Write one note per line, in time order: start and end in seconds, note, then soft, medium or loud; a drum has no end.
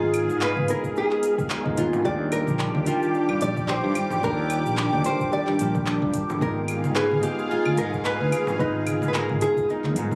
0.00 0.25 G#1 medium
0.00 0.67 G#3 loud
0.00 0.68 B3 medium
0.00 0.12 D#4 medium
0.00 0.68 D#4 medium
0.00 0.42 F4 medium
0.00 0.69 F4 medium
0.00 2.01 G#4 medium
0.00 2.07 G#4 loud
0.00 0.67 A#4 loud
0.00 4.20 F5 medium
0.14 closed hi-hat medium
0.14 claves medium
0.14 shaker medium
0.29 0.51 G#2 medium
0.29 shaker soft
0.41 0.70 B4 loud
0.41 0.67 F5 medium
0.41 clap loud
0.41 shaker soft
0.56 0.66 G#1 medium
0.56 high conga medium
0.67 1.20 G#3 medium
0.67 1.20 B3 medium
0.67 1.20 D#4 medium
0.67 1.21 F4 medium
0.67 1.21 A#4 medium
0.67 0.97 A#4 loud
0.67 closed hi-hat medium
0.67 shaker medium
0.84 kick medium
0.84 shaker soft
0.96 1.12 D#4 medium
0.96 1.34 G#4 medium
0.96 shaker soft
1.11 clap soft
1.23 closed hi-hat medium
1.23 shaker medium
1.34 1.47 G4 medium
1.38 kick loud
1.38 shaker soft
1.50 1.75 D#4 medium
1.50 clap loud
1.50 shaker soft
1.64 1.74 G#3 loud
1.64 1.74 B3 medium
1.64 1.75 D#4 medium
1.64 1.75 F4 medium
1.64 1.75 A#4 loud
1.64 kick loud
1.76 1.90 D#2 loud
1.76 2.01 G#3 medium
1.76 2.02 B3 medium
1.76 2.02 D#4 medium
1.76 2.06 F4 loud
1.76 2.02 F4 medium
1.76 2.03 B4 medium
1.76 kick medium
1.76 closed hi-hat medium
1.76 shaker medium
1.93 low conga medium
1.93 shaker soft
2.02 2.43 D#2 medium
2.02 2.83 G3 loud
2.02 2.83 D4 medium
2.02 2.84 D#4 medium
2.02 2.21 G4 loud
2.02 6.37 G4 medium
2.02 2.32 D5 loud
2.02 6.37 D6 loud
2.02 kick loud
2.02 shaker soft
2.06 2.85 F4 medium
2.06 2.85 A#4 loud
2.32 2.88 A#4 loud
2.32 closed hi-hat medium
2.32 claves medium
2.32 shaker medium
2.47 2.69 A#1 medium
2.47 high conga medium
2.47 shaker soft
2.59 2.76 D4 medium
2.59 clap loud
2.59 shaker soft
2.75 2.84 D#2 medium
2.75 high conga medium
2.85 4.20 D#3 medium
2.85 4.19 G3 loud
2.85 4.20 D4 medium
2.85 3.43 F4 loud
2.85 4.21 F4 medium
2.85 closed hi-hat medium
2.85 shaker medium
2.90 4.22 G4 loud
3.03 shaker soft
3.14 3.39 D4 medium
3.14 shaker soft
3.29 3.39 G2 medium
3.29 claves medium
3.41 3.79 A#1 medium
3.41 3.69 D5 loud
3.41 closed hi-hat medium
3.41 shaker medium
3.57 kick loud
3.57 shaker soft
3.68 3.85 G4 loud
3.68 4.24 C5 loud
3.68 clap medium
3.68 shaker soft
3.84 3.94 G2 loud
3.95 closed hi-hat medium
3.95 claves medium
3.95 shaker medium
4.10 low conga medium
4.10 shaker soft
4.21 4.61 D#2 loud
4.21 5.02 D#3 medium
4.21 5.01 G3 medium
4.21 5.02 D4 medium
4.21 4.39 D4 medium
4.21 5.05 A#4 loud
4.21 kick loud
4.21 shaker soft
4.25 5.03 F4 medium
4.25 5.04 A#4 loud
4.50 closed hi-hat medium
4.50 claves medium
4.50 shaker medium
4.66 4.87 A#1 medium
4.66 shaker soft
4.77 5.02 D4 medium
4.77 clap loud
4.77 shaker soft
4.93 5.03 D#2 medium
4.93 high conga medium
5.04 5.57 D#3 medium
5.04 5.56 G3 medium
5.04 5.57 D4 medium
5.04 5.57 F4 medium
5.04 5.57 A#4 loud
5.04 5.33 C5 loud
5.04 closed hi-hat medium
5.04 shaker medium
5.20 kick medium
5.20 shaker soft
5.32 5.48 G4 loud
5.32 6.10 D5 medium
5.32 shaker soft
5.47 5.58 G2 medium
5.47 clap soft
5.57 5.98 A#1 medium
5.57 6.39 D#3 medium
5.57 6.37 G3 medium
5.57 6.38 D4 medium
5.57 closed hi-hat medium
5.57 shaker medium
5.61 6.39 F4 medium
5.61 6.40 A#4 medium
5.75 kick loud
5.75 shaker soft
5.86 6.03 D4 medium
5.86 clap medium
5.86 shaker soft
6.02 6.12 G2 loud
6.02 kick loud
6.14 kick medium
6.14 closed hi-hat medium
6.14 shaker medium
6.30 low conga medium
6.30 shaker soft
6.39 6.79 G#1 loud
6.39 7.19 G#3 loud
6.39 7.20 B3 medium
6.39 6.66 D#4 medium
6.39 7.20 D#4 medium
6.39 10.15 G#4 medium
6.39 6.98 A#4 loud
6.39 10.15 F5 medium
6.39 kick loud
6.39 shaker soft
6.43 7.21 F4 medium
6.43 7.22 A#4 loud
6.68 closed hi-hat medium
6.68 claves medium
6.68 shaker medium
6.84 7.05 G#2 medium
6.84 high conga medium
6.84 shaker soft
6.95 7.23 G#4 loud
6.95 7.12 B4 loud
6.95 clap loud
6.95 shaker soft
7.11 7.21 G#1 medium
7.11 high conga medium
7.21 8.55 G#3 medium
7.21 8.56 B3 medium
7.21 8.57 D#4 medium
7.21 7.51 G4 loud
7.21 closed hi-hat medium
7.21 shaker medium
7.25 8.57 F4 medium
7.25 8.58 G#4 loud
7.39 shaker soft
7.50 7.66 D#4 medium
7.50 7.79 F4 loud
7.50 shaker soft
7.66 7.75 D2 medium
7.66 claves medium
7.77 8.16 G#2 medium
7.77 8.05 A#4 loud
7.77 closed hi-hat medium
7.77 shaker medium
7.93 kick medium
7.93 shaker soft
8.05 8.30 D#4 medium
8.05 8.45 B4 loud
8.05 clap loud
8.05 shaker soft
8.21 8.30 D2 loud
8.32 closed hi-hat medium
8.32 claves medium
8.32 shaker medium
8.47 low conga medium
8.47 shaker soft
8.57 8.98 G#1 medium
8.57 9.37 G#3 medium
8.57 9.38 B3 medium
8.57 9.39 D#4 medium
8.57 9.10 D#4 loud
8.57 8.76 B4 loud
8.57 kick loud
8.57 shaker soft
8.61 9.39 F4 medium
8.61 9.40 A#5 loud
8.87 closed hi-hat medium
8.87 high conga soft
8.87 claves medium
8.87 shaker medium
9.02 9.24 G#2 medium
9.02 high conga medium
9.02 shaker soft
9.08 9.14 B4 medium
9.14 9.30 D#4 medium
9.14 9.42 A#4 loud
9.14 clap loud
9.14 shaker soft
9.30 9.39 G#1 medium
9.30 high conga medium
9.40 9.92 G#3 medium
9.40 9.93 B3 medium
9.40 9.93 D#4 medium
9.40 9.93 F4 medium
9.40 9.70 G#4 loud
9.40 9.94 A#4 medium
9.40 closed hi-hat medium
9.40 shaker medium
9.57 kick medium
9.57 shaker soft
9.68 9.93 D#4 medium
9.68 10.15 D#4 medium
9.68 shaker soft
9.84 9.96 D2 medium
9.84 clap soft
9.94 10.08 G#2 medium
9.94 10.15 G#3 medium
9.94 10.15 B3 medium
9.94 10.15 D#4 medium
9.94 closed hi-hat medium
9.94 shaker medium
9.98 10.15 F4 medium
9.98 10.15 A#5 medium
10.11 kick loud